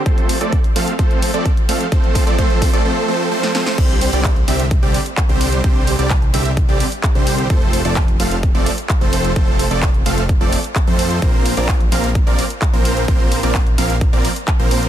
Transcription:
<<
  \new Staff \with { instrumentName = "Supersaw synth" } { \time 4/4 \key f \major \tempo 4 = 129 <f a a'>8. <f a c' a' d''>8 r16 <f a c' a' f''>8 <f a c' a' c''>8. <f a c' a' d''>8 r16 <f a c' a' f''>8 | <f a c' a' c''>8. <f a c' a' d''>16 <f a c' a' c''>8. <f a c' a' d''>16 <f a c' a' c''>8 <f a c' a' c''>8 <f a c' a' c''>8 <f a c' a' c''>8 | <d g c' g' c''>8. <d g c' g' d''>8 r16 <d g c' g' e''>8 r16 <d g c' g' d''>8 r8 <d g c' g' c''>8. | <d g c' g' c''>8. <d g c' g' d''>8 r16 <d g c' g' e''>8 r16 <d g c' g' d''>8 r8 <d g c' g' c''>8. |
<f a c' a' c''>8. <f a c' a' d''>8 r16 <f a c' a' f''>8 r16 <f a c' a' d''>8 r8 <f a c' a' c''>8. | <a c' a' c''>8. <f a c' a' d''>8 r16 <f a c' a' f''>8 r16 <f a c' a' d''>8 r8 <f a c' a' c''>8. | <f bes c' bes' c''>8. <f bes c' bes' d''>8 r16 <f bes c' bes' f''>8 r16 <f bes c' bes' d''>8 r8 <f bes c' bes' c''>8. | <f bes c'>8. <f bes c' bes' d''>8 r16 <f bes c' bes' f''>8 r16 <f bes c' bes' d''>8 r8 <f bes c' bes' c''>8. | }
  \new Staff \with { instrumentName = "Analog synth bass" } { \clef bass \time 4/4 \key f \major r1 | r1 | c,8. c,8. c,8. c,16 r8. c,8. | c,8. c,8. c,8. c,16 r8. c,8. |
f,,8. f,,8. f,,8. f,,16 r8. f,,8. | f,,8. f,,8. f,,8. f,,16 r8. f,8. | bes,,8. bes,,8. bes,,8. bes,,16 r8. bes,,8. | bes,,8. bes,,8. bes,,8. bes,,16 r8. bes,,8. | }
  \new DrumStaff \with { instrumentName = "Drums" } \drummode { \time 4/4 <hh bd>16 hh16 hho16 hh16 <hh bd>16 hh16 hho16 hh16 <hh bd>16 hh16 hho16 hh16 <hh bd>16 hh16 hho16 hh16 | <hh bd>16 hh16 <hho bd>16 hh16 <hh bd>16 hh16 <hho bd>16 hh16 r4 r16 sn16 sn16 sn16 | <cymc hh bd>16 hh16 hho16 hh16 <hc hh bd>16 hh16 hho16 hh16 <hh bd>16 hh16 hho16 hh16 <hc hh bd>16 hh16 hho16 hh16 | <hh bd>16 hh16 hho16 hh16 <hc hh bd>16 hh16 hho16 hh16 <hh bd>16 hh16 hho16 hh16 <hc hh bd>16 hh16 hho16 hh16 |
<hh bd>16 hh16 hho16 hh16 <hc hh bd>16 hh16 hho16 hh16 <hh bd>16 hh16 hho16 hh16 <hc hh bd>16 hh16 hho16 hh16 | <hh bd>16 hh16 hho16 hh16 <hc hh bd>16 hh16 hho16 hh16 <hh bd>16 hh16 hho16 hh16 <hc hh bd>16 hh16 hho16 hh16 | <hh bd>16 hh16 hho16 hh16 <hc hh bd>16 hh16 hho16 hh16 <hh bd>16 hh16 hho16 hh16 <hc hh bd>16 hh16 hho16 hh16 | <hh bd>16 hh16 hho16 hh16 <hc hh bd>16 hh16 hho16 hh16 <hh bd>16 hh16 hho16 hh16 <hc hh bd>16 hh16 hho16 hh16 | }
>>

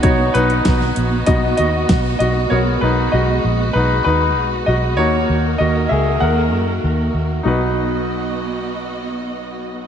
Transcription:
<<
  \new Staff \with { instrumentName = "Grand piano" } { \time 4/4 \key b \major \tempo 4 = 97 << { cis''8 <dis' b'>4. dis''8 <fis' dis''>4 <fis' dis''>8 | cis''8 <dis' b'>8 <fis' dis''>4 <dis' b'>8 <dis' b'>4 <fis' dis''>8 | <fis' cis''>4 <fis' dis''>8 <gis' e''>8 <ais' fis''>4. r8 | <dis' fis' b'>1 | } \\ { <b dis' fis'>8 r4. <b dis' fis'>8 r4. | <b fis' ais'>1 | <ais dis'>4. r2 r8 | b,,1 | } >> }
  \new Staff \with { instrumentName = "String section" } { \time 4/4 \key b \major << { fis'1~ | fis'1 | <dis ais'>1 | <b, b fis' dis''>1 | } \\ { <b dis'>1 | gis1 | ais1 | r1 | } >> }
  \new Staff \with { instrumentName = "Fingered electric bass" } { \clef bass \time 4/4 \key b \major b,,8 b,,8 b,,8 ais,,8 b,,8 dis,8 b,,8 b,,8 | b,,8 b,,8 b,,8 ais,,8 b,,8 dis,8 b,,8 b,,8 | dis,8 dis,8 dis,8 cis,8 dis,8 fis,8 dis,8 dis,8 | b,,1 | }
  \new DrumStaff \with { instrumentName = "Drums" } \drummode { \time 4/4 <hh bd>8 hh16 hh16 <hh bd sn>16 sn16 hh8 <hh bd>8 hh8 <hh bd sn>8 hh8 | r4 r4 r4 r4 | r4 r4 r4 r4 | r4 r4 r4 r4 | }
>>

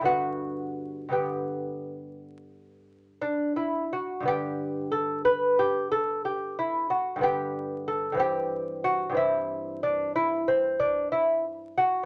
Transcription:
<<
  \new Staff \with { instrumentName = "Lute" } { \time 12/8 \key g \major \tempo 4. = 61 fis'4. g'2. d'8 e'8 fis'8 | g'4 a'8 b'8 g'8 a'8 g'8 e'8 fis'8 g'4 a'8 | g'4 fis'8 e'4 d'8 e'8 c'8 d'8 e'8 r8 fis'8 | }
  \new Staff \with { instrumentName = "Lute" } { \clef bass \time 12/8 \key g \major <g, d b>4. <g, d b>1~ <g, d b>8 | <g, d b>1~ <g, d b>8 <g, d b>4. | <g, e c'>4. <g, e c'>1~ <g, e c'>8 | }
>>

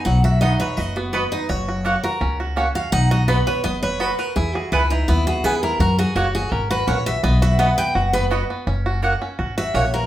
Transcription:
<<
  \new Staff \with { instrumentName = "Steel-string acoustic guitar" } { \time 4/4 \key b \major \tempo 4 = 167 fis''8 e''8 dis''8 cis''8 dis''8 fis'8 b'8 dis''8 | cis''4. ais'4 r4 eis''8 | fis''8 dis''8 b'8 cis''8 dis''8 cis''8 b'8 ais'8 | gis'8 fis'8 e'8 dis'8 e'8 fis'8 gis'8 ais'8 |
ais'8 gis'8 fis'8 gis'8 ais'8 b'8 cis''8 e''8 | dis''8 e''8 fis''8 g''8 fis''8 b'8 r4 | r2 r8 e''8 cis''8 ais'8 | }
  \new Staff \with { instrumentName = "Mandolin" } { \time 4/4 \key b \major r4 <b fis' dis'' b''>16 r4. r16 <b fis' dis'' b''>16 r8. | r4 <ais fis' cis'' fis''>16 r4. r16 <ais fis' cis'' fis''>16 r8. | r4 <b fis' dis'' b''>16 r4. r16 <b fis' dis'' b''>16 r8. | r4 <b e' b' gis''>16 r4. r16 <b e' b' gis''>16 r8. |
r4 <ais fis' cis'' fis''>16 r4. r16 <ais fis' cis'' fis''>16 r8. | r4 <b fis' dis'' b''>16 r4. r16 <b fis' dis'' b''>16 r8. | r4 <ais fis' cis'' fis''>16 r4. r16 <ais fis' cis'' fis''>16 r8. | }
  \new Staff \with { instrumentName = "Five-string banjo" } { \time 4/4 \key b \major <fis b dis'>8 fis'8 dis'8 b'8 fis'8 b8 b'8 dis'8 | fis'8 fis'8 fis'8 fis'8 cis'8 fis'8 cis'8 fis'8 | dis'8 fis'8 b8 b'8 b8 b'8 fis'8 b'8 | e'8 gis'8 b'8 e'8 b8 gis'8 b8 e'8 |
fis'8 fis'8 fis'8 fis'8 cis'8 fis'8 cis'8 fis'8 | b8 fis'8 b8 b'8 fis'8 b8 fis'8 b8 | cis'8 fis'8 fis'8 cis'8 fis'8 fis'8 cis'8 fis'8 | }
  \new Staff \with { instrumentName = "Upright bass" } { \clef bass \time 4/4 \key b \major b,,2 fis,,2 | fis,,2 cis,2 | b,,2 fis,,2 | e,4 cis,4 dis,4 e,4 |
fis,4 fis,,4 gis,,4 ais,,4 | b,,2 fis,,2 | fis,,2 gis,,4 ais,,4 | }
>>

